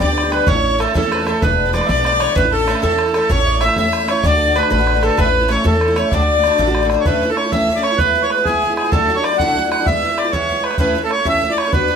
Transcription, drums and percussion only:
0.00 bodhran medium
0.18 bodhran medium
0.32 bodhran medium
0.47 bodhran loud
0.65 bodhran soft
0.80 bodhran medium
0.88 bodhran medium
0.95 bodhran medium
1.12 bodhran medium
1.27 bodhran medium
1.42 bodhran medium
1.59 bodhran soft
1.74 bodhran medium
1.81 bodhran medium
1.89 bodhran medium
2.05 bodhran medium
2.20 bodhran medium
2.36 bodhran medium
2.52 bodhran soft
2.68 bodhran medium
2.75 bodhran soft
2.83 bodhran medium
2.99 bodhran medium
3.14 bodhran medium
3.30 bodhran medium
3.46 bodhran soft
3.61 bodhran medium
3.69 bodhran medium
3.76 bodhran medium
3.93 bodhran medium
4.09 bodhran medium
4.23 bodhran medium
4.41 bodhran soft
4.56 bodhran medium
4.63 bodhran medium
4.71 bodhran medium
4.87 bodhran medium
5.03 bodhran medium
5.18 bodhran medium
5.34 bodhran soft
5.49 bodhran medium
5.57 bodhran soft
5.65 bodhran medium
5.81 bodhran medium
5.96 bodhran medium
6.12 bodhran medium
6.28 bodhran soft
6.44 bodhran medium
6.52 bodhran medium
6.59 bodhran medium
6.75 bodhran medium
6.90 bodhran medium
7.06 bodhran medium
7.37 bodhran medium
7.52 bodhran medium
7.61 bodhran soft
7.68 bodhran soft
7.83 bodhran medium
7.98 bodhran medium
8.30 bodhran medium
8.45 bodhran medium
8.54 bodhran soft
8.62 bodhran soft
8.77 bodhran medium
8.92 bodhran medium
9.24 bodhran medium
9.39 bodhran medium
9.47 bodhran soft
9.56 bodhran soft
9.72 bodhran medium
9.86 bodhran medium
10.18 bodhran medium
10.33 bodhran medium
10.41 bodhran soft
10.49 bodhran soft
10.64 bodhran medium
10.71 bodhran medium
10.78 bodhran medium
11.11 bodhran medium
11.25 bodhran medium
11.34 bodhran soft
11.43 bodhran soft
11.58 bodhran medium
11.73 bodhran medium

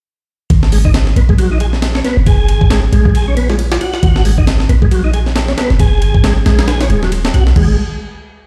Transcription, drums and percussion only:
0.50 kick loud
0.50 ride medium
0.63 snare medium
0.72 open hi-hat medium
0.85 kick loud
0.94 snare loud
0.94 ride medium
1.07 snare soft
1.16 ride medium
1.29 kick medium
1.38 ride medium
1.60 ride medium
1.73 snare soft
1.82 snare loud
1.82 ride medium
1.95 snare medium
2.04 snare soft
2.04 ride medium
2.26 kick loud
2.26 ride medium
2.48 ride medium
2.61 kick loud
2.70 snare loud
2.70 ride loud
2.93 ride medium
3.05 kick medium
3.15 ride medium
3.37 ride medium
3.50 snare medium
3.59 ride medium
3.72 snare loud
3.81 ride medium
3.94 snare medium
4.03 kick loud
4.03 ride loud
4.16 snare medium
4.25 open hi-hat medium
4.38 kick loud
4.47 snare loud
4.47 ride loud
4.60 snare soft
4.69 ride medium
4.82 kick loud
4.91 ride medium
5.14 ride medium
5.26 snare soft
5.36 snare loud
5.36 ride medium
5.48 snare medium
5.58 snare loud
5.58 ride medium
5.70 snare soft
5.79 kick loud
5.79 ride medium
6.02 ride medium
6.14 kick loud
6.24 snare loud
6.24 ride loud
6.46 snare loud
6.46 ride medium
6.59 snare loud
6.59 ride medium
6.68 snare loud
6.68 ride medium
6.81 snare loud
6.81 ride medium
6.90 ride medium
7.03 snare medium
7.12 ride medium
7.25 snare loud
7.34 ride medium
7.47 snare medium
7.56 kick loud
7.56 floor tom loud
7.56 crash medium

